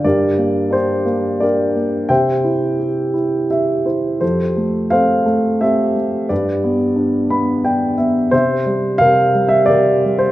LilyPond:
<<
  \new Staff \with { instrumentName = "Grand piano" } { \time 3/4 \key c \mixolydian \tempo 4 = 87 << { d''4 c''4 d''4 | g''2 r4 | c''4 f''4 e''4 | d''2~ d''8 r8 |
c''4 f''8. e''16 d''8. c''16 | } \\ { <g' bes'>4 g'4 <g' bes'>4 | <c'' e''>2 r4 | <g' a'>4 <a' c''>4 <g' a'>4 | <g' b'>2~ <g' b'>8 r8 |
<g' e''>4 bes'4 <g' bes'>4 | } >> }
  \new Staff \with { instrumentName = "Grand piano" } { \time 3/4 \key c \mixolydian g,8 bes8 d'8 bes8 d'8 bes8 | c8 e'8 g'8 e'8 <g' e''>8 <e' c''>8 | f,8 a8 c'8 a8 c'8 a8 | g,8 b8 d'8 <b b''>8 <d' g''>8 <b e''>8 |
c8 g8 c8 g8 c8 g8 | }
>>